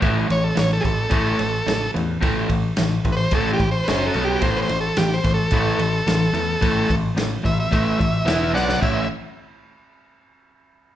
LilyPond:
<<
  \new Staff \with { instrumentName = "Transistor combo organ" } { \time 4/4 \key b \minor \tempo 4 = 109 r8 cis''16 a'16 cis''16 a'16 <gis' a'>2 r8 | r4 \tuplet 3/2 { r4 <b' c''>8 a'8 g'8 c''8 <b' c''>8 a'8 g'8 } | \tuplet 3/2 { c''8 <b' c''>8 a'8 g'8 c''8 a'8~ } a'2~ | a'8. r8. e''16 e''4.~ e''16 <d'' fis''>8 |
e''8 r2. r8 | }
  \new Staff \with { instrumentName = "Overdriven electric guitar" } { \clef bass \time 4/4 \key b \minor <a, e a>8 <a, e>8 <a, e>8 <a, e>8 <a, e a>8 <a, e>8 <a, e>8 <a, e>8 | <a, e a>8 <a, e>8 <a, e>8 <a, e>8 <a, e a>8 <a, e>8 <fis cis' fis'>8 <b, fis b>8 | <a, e a>8 <a, e>8 <a, e>8 <a, e>8 <a, e a>8 <a, e>8 <a, e>8 <a, e>8 | <a, e a>8 <a, e>8 <a, e>8 <a, e>8 <a, e a>8 <a, e>8 <e b e'>8 <b, fis b>8 |
<a, e a cis' e'>8 r2. r8 | }
  \new Staff \with { instrumentName = "Picked electric bass" } { \clef bass \time 4/4 \key b \minor a,,8 a,,8 a,,8 a,,8 a,,8 a,,8 a,,8 e,8 | a,,8 a,,8 a,,8 a,,8 a,,8 a,,8 fis,,8 b,,8 | a,,8 a,,8 a,,8 a,,8 a,,8 a,,8 a,,8 e,8 | a,,8 a,,8 a,,8 a,,8 a,,8 a,,8 e,,8 b,,8 |
a,,8 r2. r8 | }
  \new DrumStaff \with { instrumentName = "Drums" } \drummode { \time 4/4 <bd cymr>8 cymr8 <cymr sn>8 <bd cymr>8 <bd cymr>8 cymr8 <cymr sn>8 cymr8 | <bd cymr>8 <bd cymr>8 <cymr sn>8 <bd cymr>8 <bd cymr>8 <bd cymr>8 <cymr sn>8 cymr8 | <bd cymr>8 cymr8 <cymr sn>8 <bd cymr>8 <bd cymr>8 cymr8 <cymr sn>8 cymr8 | <bd cymr>8 <bd cymr>8 <cymr sn>8 <bd cymr>8 <bd cymr>8 <bd cymr>8 <cymr sn>8 sn16 sn16 |
<cymc bd>4 r4 r4 r4 | }
>>